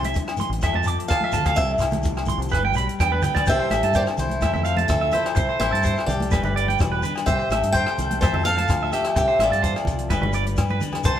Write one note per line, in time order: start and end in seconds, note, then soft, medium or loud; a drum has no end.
0.00 0.13 C2 medium
0.00 0.61 C3 medium
0.00 1.09 G3 medium
0.00 0.61 E4 medium
0.00 high conga medium
0.04 0.14 E5 medium
0.04 closed hi-hat medium
0.14 0.39 D3 medium
0.14 kick medium
0.14 closed hi-hat medium
0.14 shekere medium
0.28 cross-stick medium
0.28 low agogo medium
0.37 0.63 E3 medium
0.37 0.50 C6 medium
0.37 closed hi-hat medium
0.37 high conga medium
0.37 shekere medium
0.50 0.61 A1 medium
0.50 closed hi-hat soft
0.61 0.72 F2 medium
0.61 1.55 F3 medium
0.61 1.34 A4 medium
0.61 0.73 E5 loud
0.61 kick medium
0.61 cross-stick medium
0.61 closed hi-hat soft
0.61 low agogo medium
0.61 shekere medium
0.73 0.96 F2 medium
0.73 0.85 A5 medium
0.73 high conga medium
0.83 shekere loud
0.88 1.58 C4 medium
0.88 0.97 D6 medium
0.88 closed hi-hat medium
1.00 closed hi-hat soft
1.08 1.54 A3 medium
1.08 1.55 F4 medium
1.08 1.53 F5 medium
1.08 1.20 A5 medium
1.08 kick medium
1.08 cross-stick medium
1.08 closed hi-hat medium
1.08 low agogo medium
1.08 shekere medium
1.21 1.33 E5 medium
1.21 high conga medium
1.32 1.56 D2 medium
1.32 1.58 A4 medium
1.32 1.44 A5 medium
1.32 closed hi-hat medium
1.32 low conga medium
1.32 shekere loud
1.46 1.56 F5 medium
1.46 kick medium
1.46 cross-stick medium
1.46 closed hi-hat soft
1.46 high conga medium
1.46 low agogo medium
1.55 1.78 C2 loud
1.55 2.49 C3 medium
1.55 2.51 G3 medium
1.55 1.81 E4 medium
1.55 1.71 E5 loud
1.55 muted clean electric guitar stroke medium
1.55 kick medium
1.55 closed hi-hat soft
1.55 shekere medium
1.59 2.50 G4 medium
1.59 2.53 A4 medium
1.78 2.36 C2 medium
1.78 muted clean electric guitar stroke medium
1.78 cross-stick medium
1.78 closed hi-hat medium
1.78 low agogo medium
1.78 shekere loud
1.82 2.50 E4 medium
1.91 closed hi-hat soft
1.91 high conga medium
1.91 low conga medium
1.91 shekere soft
2.03 2.28 E3 medium
2.03 kick medium
2.03 closed hi-hat medium
2.03 shekere medium
2.17 cross-stick medium
2.17 low agogo medium
2.25 2.52 F3 medium
2.25 2.39 C6 medium
2.25 closed hi-hat soft
2.25 high conga medium
2.25 low conga medium
2.25 shekere medium
2.38 2.50 C2 medium
2.38 closed hi-hat soft
2.38 shekere soft
2.49 3.47 G3 medium
2.49 2.62 B4 medium
2.49 low agogo medium
2.49 shekere medium
2.53 2.75 G1 loud
2.53 muted clean electric guitar stroke medium
2.53 kick medium
2.53 cross-stick medium
2.53 closed hi-hat soft
2.63 2.74 G5 medium
2.63 high conga medium
2.74 2.87 B1 medium
2.74 2.86 B5 medium
2.74 shekere loud
2.78 3.45 G4 medium
2.78 closed hi-hat soft
2.89 closed hi-hat soft
3.00 3.20 E2 medium
3.00 3.45 D4 medium
3.00 3.24 B4 medium
3.00 3.10 G5 medium
3.00 kick medium
3.00 cross-stick medium
3.00 closed hi-hat medium
3.00 low agogo medium
3.00 shekere medium
3.12 3.22 B4 medium
3.12 high conga medium
3.21 3.44 D2 medium
3.21 3.33 G5 medium
3.21 closed hi-hat medium
3.21 low conga medium
3.21 shekere medium
3.25 3.45 B4 medium
3.35 3.45 D5 medium
3.35 kick medium
3.35 cross-stick medium
3.35 closed hi-hat soft
3.35 high conga medium
3.35 low agogo medium
3.35 shekere soft
3.46 3.59 C2 medium
3.46 4.39 C3 medium
3.46 4.42 G3 medium
3.46 4.40 E4 medium
3.46 3.92 G4 medium
3.46 3.57 C5 medium
3.46 3.93 E5 loud
3.46 muted clean electric guitar stroke medium
3.46 kick medium
3.46 closed hi-hat medium
3.46 shekere loud
3.50 3.70 A4 medium
3.59 3.69 C5 medium
3.59 shekere soft
3.70 3.82 A1 medium
3.70 4.42 A4 medium
3.70 3.81 E5 medium
3.70 cross-stick medium
3.70 closed hi-hat medium
3.70 high conga medium
3.70 low agogo medium
3.70 shekere medium
3.83 4.05 G2 loud
3.83 3.93 A5 medium
3.83 closed hi-hat medium
3.93 4.19 D3 medium
3.93 4.02 G4 medium
3.93 4.05 C5 medium
3.93 4.02 D5 medium
3.93 kick medium
3.93 closed hi-hat medium
3.93 shekere loud
4.06 cross-stick medium
4.06 low agogo medium
4.06 shekere soft
4.17 4.41 C2 medium
4.17 4.42 E3 medium
4.17 4.86 E4 medium
4.17 4.86 C5 medium
4.17 closed hi-hat medium
4.17 low conga medium
4.17 shekere medium
4.29 closed hi-hat soft
4.29 high conga medium
4.29 shekere soft
4.41 4.53 F2 medium
4.41 5.34 F3 medium
4.41 5.12 A3 medium
4.41 5.35 E4 medium
4.41 4.66 A4 medium
4.41 4.52 E5 medium
4.41 kick medium
4.41 cross-stick medium
4.41 closed hi-hat soft
4.41 high conga medium
4.41 low agogo medium
4.41 shekere loud
4.53 4.88 F2 loud
4.53 4.63 E5 medium
4.53 high conga medium
4.53 low conga medium
4.53 shekere soft
4.65 5.13 A4 medium
4.65 4.75 F5 medium
4.65 closed hi-hat soft
4.65 shekere medium
4.77 4.87 A5 medium
4.77 closed hi-hat soft
4.77 high conga medium
4.88 5.12 D2 loud
4.88 5.35 F4 medium
4.88 5.11 A4 medium
4.88 5.13 E5 medium
4.88 kick medium
4.88 cross-stick medium
4.88 closed hi-hat soft
4.88 low agogo medium
4.88 shekere loud
5.01 5.11 E5 medium
5.11 5.34 A3 medium
5.11 5.57 E4 medium
5.11 5.60 A4 medium
5.11 5.58 C5 medium
5.11 5.23 E5 medium
5.11 closed hi-hat soft
5.11 low conga medium
5.11 shekere medium
5.26 cross-stick medium
5.26 closed hi-hat soft
5.26 low agogo medium
5.35 5.48 C2 loud
5.35 6.28 C3 medium
5.35 5.46 C5 medium
5.35 kick medium
5.35 closed hi-hat medium
5.35 shekere loud
5.49 5.59 C5 medium
5.49 shekere soft
5.60 5.72 A1 medium
5.60 6.04 E4 medium
5.60 6.07 A4 medium
5.60 6.04 C5 loud
5.60 5.71 E5 medium
5.60 cross-stick medium
5.60 closed hi-hat medium
5.60 high conga medium
5.60 low agogo medium
5.72 5.95 G2 medium
5.72 5.82 A5 medium
5.72 closed hi-hat soft
5.83 6.29 G4 medium
5.83 5.94 C5 medium
5.83 kick medium
5.83 closed hi-hat medium
5.83 shekere loud
5.96 cross-stick medium
5.96 low agogo medium
5.96 shekere soft
6.06 6.30 C2 medium
6.06 6.31 G3 medium
6.06 6.98 G4 medium
6.06 6.32 A4 medium
6.06 6.98 D5 medium
6.06 closed hi-hat medium
6.06 low conga medium
6.06 shekere medium
6.20 closed hi-hat soft
6.20 high conga medium
6.20 shekere soft
6.31 6.42 G1 loud
6.31 7.97 G3 medium
6.31 6.42 B4 medium
6.31 kick medium
6.31 cross-stick medium
6.31 closed hi-hat soft
6.31 high conga medium
6.31 low agogo medium
6.31 shekere loud
6.43 6.76 G1 medium
6.43 6.54 B4 medium
6.43 high conga medium
6.43 low conga medium
6.43 shekere soft
6.56 6.79 B4 medium
6.56 6.66 D5 medium
6.56 closed hi-hat medium
6.68 6.78 G5 medium
6.68 closed hi-hat soft
6.68 high conga medium
6.79 7.02 E1 loud
6.79 7.03 B4 medium
6.79 kick medium
6.79 cross-stick medium
6.79 closed hi-hat medium
6.79 low agogo medium
6.79 shekere medium
6.92 7.01 B4 medium
7.03 7.24 D4 medium
7.03 7.13 B4 medium
7.03 7.24 B4 medium
7.03 closed hi-hat medium
7.03 low conga medium
7.03 shekere medium
7.16 cross-stick medium
7.16 closed hi-hat medium
7.16 low agogo medium
7.26 7.38 C2 loud
7.26 8.18 C3 medium
7.26 7.70 G4 medium
7.26 7.37 C5 loud
7.26 7.72 E5 medium
7.26 kick medium
7.26 closed hi-hat medium
7.26 shekere loud
7.39 7.49 C5 medium
7.39 shekere soft
7.49 7.61 A1 medium
7.49 7.98 A4 medium
7.49 7.61 E5 medium
7.49 cross-stick medium
7.49 closed hi-hat medium
7.49 high conga medium
7.49 low agogo medium
7.49 shekere medium
7.62 7.84 G2 medium
7.62 closed hi-hat medium
7.62 shekere soft
7.72 8.20 G4 medium
7.72 8.18 C5 medium
7.72 7.84 C5 medium
7.72 8.21 G5 loud
7.72 kick medium
7.72 closed hi-hat medium
7.72 shekere loud
7.86 cross-stick medium
7.86 low agogo medium
7.86 shekere soft
7.98 8.20 C2 medium
7.98 8.22 G3 medium
7.98 8.45 A4 medium
7.98 closed hi-hat medium
7.98 low conga medium
7.98 shekere medium
8.11 closed hi-hat medium
8.11 high conga medium
8.11 shekere soft
8.21 8.33 F2 loud
8.21 9.14 F3 medium
8.21 8.43 C5 medium
8.21 8.32 E5 medium
8.21 8.45 A5 medium
8.21 kick medium
8.21 cross-stick medium
8.21 closed hi-hat medium
8.21 high conga medium
8.21 low agogo medium
8.21 shekere loud
8.33 8.66 F2 loud
8.33 8.44 E5 medium
8.33 high conga medium
8.33 low conga medium
8.45 8.93 A4 medium
8.45 8.90 A4 medium
8.45 8.55 F5 medium
8.45 8.89 F5 loud
8.45 closed hi-hat medium
8.45 shekere medium
8.58 8.67 A5 medium
8.58 closed hi-hat medium
8.58 high conga medium
8.68 8.91 D2 loud
8.68 9.14 F4 medium
8.68 kick medium
8.68 cross-stick medium
8.68 closed hi-hat medium
8.68 low agogo medium
8.68 shekere loud
8.83 8.91 E5 medium
8.92 9.14 A3 medium
8.92 9.15 G4 medium
8.92 9.39 A4 medium
8.92 9.03 E5 medium
8.92 9.15 E5 medium
8.92 closed hi-hat medium
8.92 shekere medium
9.04 cross-stick medium
9.04 closed hi-hat soft
9.04 low agogo medium
9.16 9.27 C2 loud
9.16 10.08 C3 medium
9.16 9.38 G4 medium
9.16 9.41 E5 medium
9.16 muted clean electric guitar stroke loud
9.16 kick loud
9.16 closed hi-hat medium
9.16 shekere loud
9.28 9.37 C5 medium
9.39 9.50 A1 medium
9.39 10.79 F4 medium
9.39 10.11 A4 medium
9.39 9.50 E5 medium
9.39 cross-stick medium
9.39 closed hi-hat medium
9.39 high conga medium
9.39 low agogo medium
9.39 shekere medium
9.44 10.79 D5 medium
9.51 9.73 G2 loud
9.51 9.61 A5 medium
9.51 closed hi-hat soft
9.51 shekere soft
9.63 9.87 E3 medium
9.63 9.73 C5 medium
9.63 kick medium
9.63 closed hi-hat medium
9.63 shekere medium
9.76 cross-stick medium
9.76 low agogo medium
9.76 shekere soft
9.85 10.09 C2 medium
9.85 10.11 F3 medium
9.85 kick medium
9.85 closed hi-hat medium
9.85 low conga medium
9.85 shekere medium
9.99 closed hi-hat medium
10.10 10.20 G1 loud
10.10 11.04 G3 medium
10.10 10.20 B4 medium
10.10 kick medium
10.10 cross-stick medium
10.10 closed hi-hat soft
10.10 high conga medium
10.10 low agogo medium
10.10 shekere medium
10.21 10.55 G1 loud
10.21 10.32 B4 medium
10.21 high conga medium
10.21 low conga medium
10.33 10.58 B4 medium
10.33 10.44 D5 medium
10.33 closed hi-hat medium
10.33 shekere medium
10.47 closed hi-hat soft
10.47 high conga medium
10.57 10.80 G2 loud
10.57 10.80 B4 medium
10.57 kick medium
10.57 cross-stick medium
10.57 closed hi-hat medium
10.57 high conga medium
10.57 low agogo medium
10.57 shekere loud
10.69 10.80 B4 medium
10.69 high conga medium
10.69 shekere soft
10.81 11.02 D4 medium
10.81 11.02 B4 medium
10.81 closed hi-hat medium
10.81 low conga medium
10.81 shekere medium
10.92 cross-stick medium
10.92 closed hi-hat soft
10.92 low conga medium
10.92 low agogo medium
10.92 shekere soft
11.04 11.17 C2 loud
11.04 11.20 C3 medium
11.04 11.20 G3 medium
11.04 11.20 E4 medium
11.04 11.20 G4 medium
11.04 11.20 A4 medium
11.04 11.15 C5 medium
11.04 11.20 C5 medium
11.04 11.20 A5 loud
11.04 kick medium
11.04 closed hi-hat soft
11.04 shekere loud
11.16 shekere soft